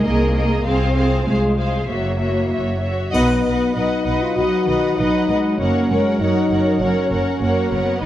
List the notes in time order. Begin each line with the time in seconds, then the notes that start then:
Already playing: D#4 A#4
0.05 C2 A#3 G#4 A#4 D#5
0.35 G#4 A#4 D#5
0.65 C2 C4 F4 G#4 C5 F5
0.95 G#4 C5 F5
1.27 C2 G#3 G#4 C5 F5
1.57 G#4 C5 F5
1.88 F#1 A#3 E4 F#4 C#5 E5
2.20 F#4 C#5 E5
2.50 F#1 F#4 C#5 E5
2.80 F#4 C#5 E5
3.12 B1 F#3 B3 D#4 B4 D#5 F#5, triangle
3.43 B1 B4 D#5 F#5
3.74 B1 D#4 B4 D#5 F#5
4.05 B1 B4 D#5 F#5
4.22 F4
4.36 B1 F#3 F#4 B4 D#5 F#5
4.67 B1 D#3 B4 D#5 F#5
4.97 B1 F#3 D#4 B4 D#5 F#5
5.28 B1 G#3 B4 D#5 F#5
5.57 F#1 A#3 C#4 A#4 C#5 F#5
5.89 F#1 G#3 A#4 C#5 F#5
6.19 F#1 F#3 D#4 A#4 C#5 F#5
6.50 F#1 A#4 C#5 F#5
6.80 F#1 C#4 A#4 C#5 F#5
7.10 F#1 A#4 C#5 F#5
7.41 F#1 A#3 A#4 C#5 F#5
7.72 F#1 B3 A#4 C#5 F#5
8.01 G#1 D#3 B3 D#4 B4 D#5